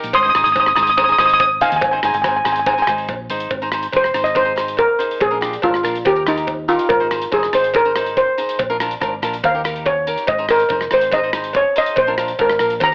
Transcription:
Already playing: D#4 G4 A#4 G5 A#5
0.03 A#1, closed hi-hat
0.13 G#1 C6 D#6, kick, closed hi-hat, cowbell
0.23 D#4 G#4 C5 D#6
0.29 D#6
0.35 G#1 D#4 G#4 C5 D#6, cross-stick, closed hi-hat
0.44 G#1 D#6, closed hi-hat
0.52 D#4 D#6, kick, closed hi-hat, cowbell
0.57 G#4 C5 D#6
0.66 D#6, cross-stick
0.76 G#1 D#4 G#4 C5 D#6, cross-stick, closed hi-hat
0.83 D#6
0.87 D#6, closed hi-hat
0.97 D#4 G#4 C5 D#6, kick, closed hi-hat, cowbell
1.04 D#6
1.08 D#4 G#4 C5 D#6
1.18 G#1 D#4 G#4 C5 D#6, cross-stick, closed hi-hat
1.26 D#6, closed hi-hat
1.34 D#6
1.40 D#6, kick, closed hi-hat, cowbell
1.61 D#4 G#4 C5 F5 G#5, closed hi-hat
1.70 D#2 G#5, closed hi-hat
1.76 G#5
1.82 G#1 G#5, kick, closed hi-hat, cowbell
1.92 D#4 G#4 C5 G#5
1.98 G#5
2.03 G#1 D#4 G#4 C5 G#5, cross-stick, closed hi-hat
2.14 G#1 G#5, closed hi-hat
2.22 D#4 G#4 G#5, kick, cross-stick, closed hi-hat, cowbell
2.27 C5 G#5
2.37 G#5
2.45 G#1 D#4 G#4 C5 G#5, cross-stick, closed hi-hat
2.53 G#5, closed hi-hat
2.60 G#5
2.66 D#4 G#4 C5 G#5, kick, closed hi-hat, cowbell
2.73 G#5
2.78 D#4 G#4 C5
2.82 G#5
2.87 G#1 D#4 G#4 C5 G#5, cross-stick, closed hi-hat
2.98 closed hi-hat
3.08 A#1, kick, closed hi-hat, cowbell
3.30 G#1 D#4 G#4 C5, closed hi-hat
3.40 closed hi-hat
3.51 G#1, kick, closed hi-hat, cowbell
3.62 D#4 G#4 C5
3.72 D#4 G#4 C5, cross-stick, closed hi-hat
3.83 closed hi-hat
3.92 F1 D#4 G#4 C5, kick, closed hi-hat, cowbell
3.97 C5
4.04 cross-stick
4.14 G#1 D#4 G#4 C5, cross-stick, closed hi-hat
4.24 D#5, closed hi-hat
4.35 D#4 G#4 C5, kick, closed hi-hat, cowbell
4.45 D#4 G#4 C5
4.56 D#4 G#4 C5, cross-stick, closed hi-hat
4.68 closed hi-hat
4.77 A#4, kick, closed hi-hat, cowbell
4.99 D#4 G#4 C5, closed hi-hat
5.11 closed hi-hat
5.20 A#1 G#4, kick, closed hi-hat, cowbell
5.31 D4 F4 A#4
5.41 D4 F4 G4, cross-stick, closed hi-hat
5.53 closed hi-hat
5.62 G#1 D4 F4 A#4, kick, closed hi-hat, cowbell
5.74 cross-stick
5.83 A#1 D4 F4 A#4, cross-stick, closed hi-hat
5.95 closed hi-hat
6.05 D#2 D#4 G4 A#4, kick, closed hi-hat, cowbell
6.15 D#4 G4 A#4
6.26 D#4 G4 A#4, cross-stick, closed hi-hat
6.37 closed hi-hat
6.47 kick, closed hi-hat, cowbell
6.68 D#4 F4 G4 A#4, closed hi-hat
6.79 closed hi-hat
6.89 G#1 A#4, kick, closed hi-hat, cowbell
7.00 D#4 G#4 C5
7.11 D#4 G#4 C5, cross-stick, closed hi-hat
7.22 closed hi-hat
7.32 F1 D#4 G#4 C5, kick, closed hi-hat, cowbell
7.43 cross-stick
7.53 G#1 D#4 G#4 C5, cross-stick, closed hi-hat
7.64 closed hi-hat
7.74 D#4 G#4 A#4 C5, kick, closed hi-hat, cowbell
7.85 D#4 G#4 C5
7.96 D#4 G#4 C5, cross-stick, closed hi-hat
8.06 closed hi-hat
8.17 C5, kick, closed hi-hat, cowbell
8.38 D#4 G#4 C5, closed hi-hat
8.49 closed hi-hat
8.59 A#1, kick, closed hi-hat, cowbell
8.70 D4 F4 A#4
8.80 D4 F4 A#4, cross-stick, closed hi-hat
8.91 closed hi-hat
9.00 G#1 D4 F4 A#4, kick, cross-stick, closed hi-hat, cowbell
9.22 A#1 D4 F4 A#4, cross-stick, closed hi-hat
9.33 closed hi-hat
9.43 D#2 D#4 G4 A#4 F5, kick, closed hi-hat, cowbell
9.54 D#4 G4 A#4
9.64 D#4 G4 A#4, cross-stick, closed hi-hat
9.76 closed hi-hat
9.86 C#5, kick, closed hi-hat, cowbell
10.07 D#4 G4 A#4, closed hi-hat
10.18 closed hi-hat
10.27 G#1 D#5, kick, closed hi-hat, cowbell
10.39 D#4 G#4 C5
10.49 D#4 G#4 A#4 C5, cross-stick, closed hi-hat
10.60 closed hi-hat
10.69 F1 D#4 G#4 C5, kick, closed hi-hat, cowbell
10.81 cross-stick
10.91 G#1 D#4 G#4 C5, cross-stick, closed hi-hat
11.02 closed hi-hat
11.12 D#4 G#4 C5 D#5, kick, closed hi-hat, cowbell
11.24 D#4 G#4 C5
11.33 D#4 G#4 C5, cross-stick, closed hi-hat
11.44 closed hi-hat
11.53 C#5, kick, closed hi-hat, cowbell
11.76 D#4 G#4 C5 D#5, closed hi-hat
11.86 closed hi-hat
11.96 A#1 C5, kick, closed hi-hat, cowbell
12.07 D4 F4 A#4
12.18 D4 F4 A#4, cross-stick, closed hi-hat
12.28 closed hi-hat
12.39 G#1 D4 F4 A#4, kick, closed hi-hat, cowbell
12.50 cross-stick
12.59 A#1 D4 F4 A#4, cross-stick, closed hi-hat
12.70 closed hi-hat
12.80 D#2 D#4 G4 A#4 A#5, kick, closed hi-hat, cowbell

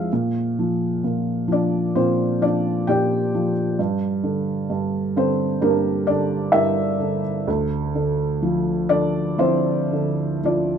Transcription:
Already playing: F3 G#3 C4 E4 F4 G#4 C5 E5 F5
0.13 A#2
0.59 F3
1.04 A#2
1.48 F3
1.52 D4 D5
1.95 A#2 C4 F4 C5
2.41 F3 D4 D5
2.87 A#2 G4 D5 G5
3.34 F3
3.79 G2
4.23 D3
4.70 G2
5.16 D3 C4 C5
5.61 G2 A#3 D4 G4 A#4
6.07 D3 D4 D5
6.52 G2 E4 A#4 E5
6.99 D3
7.47 D2
7.95 D3
8.42 F3
8.89 D3 D4 D5
9.38 F3 C4 E4 F4 C5
9.93 D3
10.44 F3 D4 F4 D5

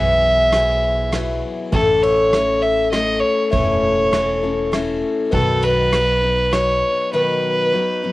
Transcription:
Already playing: B1 E3 F#3 B3 E4 G#4 E5
0.52 F#3 B3 E4 G#4, cross-stick, ride
1.12 F#3 B3 E4 G#4, cross-stick, ride
1.72 A1 A2 E3 A3 C#4 E4 A4, kick, ride
2.03 C#5, ride
2.31 A3 C#4 E4 A4, cross-stick, ride
2.62 E5
2.91 A3 C#4 E4 A4 D#5, cross-stick, ride
3.20 C#5
3.51 E1 A2 E3 A3 C#4 E4 A4 C#5, kick, ride
4.11 A3 C#4 E4 A4, cross-stick, ride
4.42 A3 C#4 E4 A4
4.72 A3 C#4 E4 A4, cross-stick, ride
5.31 B1 B2 D#3 F#3 B3 D#4 A4 B4, kick, ride
5.63 B4, ride
5.92 F#3 B3 D#4 B4, cross-stick, ride
6.22 F#3 B3 D#4 B4
6.51 F#3 B3 D#4 B4 C#5, cross-stick, ride
7.13 B2 D#3 F#3 B3 D#4 B4
7.73 F#3 B3 D#4 B4
8.03 F#3 B3 D#4 B4

